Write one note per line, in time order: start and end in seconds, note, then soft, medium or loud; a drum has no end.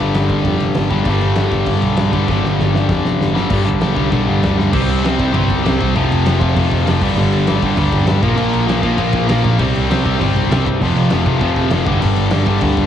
0.00 0.12 G1 medium
0.00 0.93 G2 medium
0.00 0.90 D3 medium
0.00 0.90 G3 loud
0.14 0.27 G1 medium
0.14 snare loud
0.14 crash medium
0.29 0.42 G1 medium
0.29 kick medium
0.29 crash medium
0.45 0.57 F2 medium
0.45 kick loud
0.45 crash medium
0.59 0.72 F1 medium
0.59 crash medium
0.74 0.88 G1 medium
0.74 snare loud
0.74 crash medium
0.90 1.03 G1 medium
0.90 1.07 G2 medium
0.90 1.06 D3 medium
0.90 1.10 G3 medium
0.90 kick medium
0.90 crash medium
1.05 1.18 G1 loud
1.05 2.15 G2 medium
1.05 2.13 D3 loud
1.05 kick medium
1.05 crash medium
1.10 2.12 G3 loud
1.21 1.33 G1 medium
1.21 crash medium
1.35 1.48 G1 medium
1.35 snare loud
1.35 crash medium
1.52 1.64 G1 medium
1.52 kick medium
1.52 crash medium
1.66 1.79 G1 loud
1.66 kick medium
1.66 crash medium
1.82 1.94 B1 loud
1.82 crash medium
1.97 2.10 G2 medium
1.97 snare loud
1.97 crash medium
2.13 2.25 G1 medium
2.13 2.27 G2 medium
2.13 2.28 D3 medium
2.13 2.30 G3 medium
2.13 kick medium
2.13 crash medium
2.27 2.41 G1 loud
2.27 3.34 G2 medium
2.27 3.35 D3 loud
2.27 3.33 G3 loud
2.27 kick medium
2.27 snare medium
2.43 2.55 G1 loud
2.43 snare medium
2.59 2.71 G1 medium
2.59 snare medium
2.74 2.87 G1 medium
2.74 snare medium
2.89 3.02 F2 medium
2.89 kick loud
2.89 snare medium
3.05 3.18 F1 loud
3.05 snare medium
3.21 3.33 G1 medium
3.21 snare medium
3.34 3.48 G1 medium
3.34 3.48 G2 medium
3.34 3.50 D3 medium
3.34 3.49 G3 medium
3.34 snare medium
3.49 3.63 G1 loud
3.49 3.65 G2 loud
3.49 3.65 D3 medium
3.49 3.64 G3 loud
3.49 kick loud
3.49 crash loud
3.49 crash medium
3.65 3.79 G1 loud
3.65 3.80 G2 medium
3.65 3.80 D3 medium
3.65 3.81 G3 loud
3.73 kick medium
3.81 3.94 G1 medium
3.81 3.95 G2 medium
3.81 3.95 D3 medium
3.81 3.94 G3 loud
3.81 snare loud
3.81 crash medium
3.95 4.09 C2 medium
3.95 4.10 G2 medium
3.95 4.11 D3 medium
3.95 4.11 G3 medium
3.95 kick medium
4.11 4.24 B1 loud
4.11 4.26 G2 medium
4.11 4.26 D3 loud
4.11 4.26 G3 medium
4.11 kick loud
4.11 crash medium
4.27 4.40 G1 medium
4.27 4.42 G2 medium
4.27 4.42 D3 medium
4.27 4.43 G3 medium
4.43 4.55 D2 medium
4.43 4.57 G2 medium
4.43 4.57 D3 medium
4.43 4.56 G3 loud
4.43 snare loud
4.43 crash medium
4.58 4.71 G1 medium
4.58 4.73 G2 medium
4.58 4.72 D3 medium
4.58 4.72 G3 medium
4.58 snare medium
4.72 4.86 C2 loud
4.72 5.02 C3 medium
4.72 5.02 G3 loud
4.72 5.03 C4 loud
4.72 kick loud
4.72 crash loud
4.89 5.02 C2 medium
4.89 crash medium
5.03 5.18 C2 medium
5.03 5.18 C3 medium
5.03 5.18 G3 medium
5.03 5.17 C4 loud
5.03 snare loud
5.03 crash medium
5.19 5.32 C2 medium
5.19 5.31 C3 medium
5.19 5.32 G3 medium
5.19 5.32 C4 loud
5.19 kick loud
5.19 crash medium
5.32 5.47 G1 loud
5.32 5.62 C3 loud
5.32 5.63 G3 loud
5.32 5.64 C4 loud
5.32 kick loud
5.32 crash medium
5.38 5.96 C4 medium
5.50 5.63 C2 medium
5.50 kick medium
5.50 crash medium
5.63 5.78 C2 loud
5.63 5.80 C3 medium
5.63 5.79 G3 medium
5.63 5.78 C4 loud
5.63 snare loud
5.63 crash medium
5.79 5.94 C2 medium
5.79 5.94 C3 medium
5.79 5.95 G3 medium
5.79 5.94 C4 medium
5.79 kick medium
5.79 crash medium
5.95 6.09 F1 medium
5.95 6.26 F2 loud
5.95 6.26 C3 loud
5.95 6.27 F3 loud
5.95 kick loud
5.95 crash medium
6.11 6.24 F1 loud
6.11 crash medium
6.26 6.39 F1 medium
6.26 6.40 F2 medium
6.26 6.40 C3 loud
6.26 6.39 F3 loud
6.26 snare loud
6.26 crash medium
6.40 6.54 F1 medium
6.40 6.55 F2 medium
6.40 6.56 C3 medium
6.40 6.57 F3 loud
6.40 kick loud
6.40 crash medium
6.56 6.70 F1 loud
6.56 6.86 F2 loud
6.56 6.87 C3 loud
6.56 6.86 F3 loud
6.56 kick loud
6.56 crash loud
6.72 6.85 F1 loud
6.72 kick loud
6.72 crash medium
6.87 7.00 F1 loud
6.87 7.01 F2 loud
6.87 7.02 C3 medium
6.87 7.02 F3 loud
6.87 snare loud
6.87 crash medium
7.01 7.15 G1 medium
7.01 7.18 G2 medium
7.01 7.17 D3 medium
7.01 7.16 G3 medium
7.01 kick loud
7.01 crash loud
7.17 7.31 G1 loud
7.17 7.48 G2 medium
7.17 7.48 D3 loud
7.17 7.47 G3 loud
7.17 crash loud
7.32 7.46 G1 medium
7.32 crash medium
7.47 7.61 G1 medium
7.47 7.62 G2 medium
7.47 7.62 D3 medium
7.47 7.62 G3 loud
7.47 snare loud
7.47 crash medium
7.62 7.76 G1 loud
7.62 7.78 G2 medium
7.62 7.77 D3 loud
7.62 7.77 G3 loud
7.62 kick medium
7.62 crash medium
7.77 7.91 D2 medium
7.77 8.07 G2 medium
7.77 8.06 D3 loud
7.77 8.06 G3 loud
7.77 kick loud
7.77 crash loud
7.92 8.06 G1 medium
7.92 kick medium
7.92 crash medium
8.07 8.21 G1 loud
8.07 8.23 G2 medium
8.07 8.21 D3 medium
8.07 8.22 G3 loud
8.07 snare loud
8.07 crash medium
8.22 8.36 A#1 loud
8.22 8.37 A#2 loud
8.22 8.36 F3 loud
8.22 8.35 A#3 loud
8.22 kick loud
8.22 crash medium
8.36 8.52 A#1 loud
8.36 8.67 A#2 medium
8.36 8.66 F3 loud
8.36 8.65 A#3 loud
8.36 crash medium
8.53 8.67 A#1 loud
8.53 crash medium
8.67 8.82 A#1 medium
8.67 8.80 A#2 medium
8.67 8.80 F3 medium
8.67 8.81 A#3 loud
8.67 snare loud
8.67 crash medium
8.81 8.97 A#1 medium
8.81 8.97 A#2 medium
8.81 8.97 F3 medium
8.81 8.96 A#3 medium
8.81 kick medium
8.81 crash medium
8.86 9.45 A#2 medium
8.97 9.12 A#1 medium
8.97 9.28 A#2 medium
8.97 9.27 F3 medium
8.97 9.27 A#3 loud
8.97 kick loud
8.97 crash medium
9.13 9.27 A#1 loud
9.13 kick loud
9.13 crash medium
9.28 9.42 A#1 loud
9.28 9.42 A#2 medium
9.28 9.43 F3 medium
9.28 9.43 A#3 loud
9.28 snare loud
9.28 crash medium
9.43 9.58 A#1 loud
9.43 9.58 A#2 medium
9.43 9.58 F3 medium
9.43 9.59 A#3 loud
9.43 kick medium
9.43 crash medium
9.59 9.73 C2 loud
9.59 9.88 C3 loud
9.59 9.89 G3 loud
9.59 9.89 C4 loud
9.59 kick loud
9.59 crash loud
9.75 9.88 C2 loud
9.75 crash medium
9.89 10.04 C2 medium
9.89 10.04 C3 medium
9.89 10.04 G3 loud
9.89 10.03 C4 loud
9.89 snare loud
9.89 crash medium
10.04 10.19 C2 loud
10.04 10.18 C3 medium
10.04 10.18 G3 medium
10.04 10.19 C4 loud
10.04 kick medium
10.04 crash medium
10.19 10.34 G1 loud
10.19 10.49 C3 medium
10.19 10.50 G3 loud
10.19 10.51 C4 loud
10.19 kick medium
10.19 crash medium
10.36 10.49 C2 medium
10.36 kick medium
10.36 crash medium
10.51 10.64 C2 loud
10.51 10.66 C3 medium
10.51 10.66 G3 medium
10.51 10.65 C4 loud
10.51 snare loud
10.51 crash medium
10.66 10.80 G2 medium
10.66 10.81 C3 medium
10.66 10.81 G3 medium
10.66 10.81 C4 medium
10.66 kick medium
10.66 crash medium
10.81 10.94 F1 loud
10.81 11.10 F2 loud
10.81 11.11 C3 medium
10.81 11.12 F3 loud
10.81 kick loud
10.81 crash medium
10.96 11.09 F1 loud
10.96 crash medium
11.10 11.25 F1 medium
11.10 11.26 F2 medium
11.10 11.26 C3 loud
11.10 11.25 F3 loud
11.10 snare loud
11.10 crash medium
11.26 11.40 F1 loud
11.26 11.40 F2 medium
11.26 11.41 C3 medium
11.26 11.41 F3 loud
11.26 kick loud
11.26 crash medium
11.41 11.54 F1 loud
11.41 11.70 F2 loud
11.41 11.71 C3 loud
11.41 11.71 F3 loud
11.41 kick loud
11.41 crash medium
11.56 11.69 F1 medium
11.56 kick loud
11.56 crash medium
11.70 11.85 F1 loud
11.70 11.86 F2 medium
11.70 11.86 C3 loud
11.70 11.87 F3 loud
11.70 snare loud
11.70 crash medium
11.86 12.00 G1 medium
11.86 12.01 G2 medium
11.86 12.00 D3 loud
11.86 12.00 G3 loud
11.86 kick loud
11.86 crash medium
12.01 12.16 G1 loud
12.01 12.32 G2 loud
12.01 12.32 D3 loud
12.01 12.32 G3 loud
12.01 crash loud
12.16 12.30 G1 medium
12.16 crash medium
12.30 12.46 G1 medium
12.30 12.46 G2 medium
12.30 12.47 D3 medium
12.30 12.49 G3 loud
12.30 snare loud
12.30 crash loud
12.46 12.60 G1 medium
12.46 12.62 G2 medium
12.46 12.61 D3 medium
12.46 12.61 G3 medium
12.46 kick medium
12.46 crash medium
12.61 12.75 D2 loud
12.61 12.86 G2 medium
12.61 12.86 D3 loud
12.61 12.86 G3 loud
12.61 kick loud
12.61 crash loud
12.77 12.86 G1 loud
12.77 kick medium
12.77 crash medium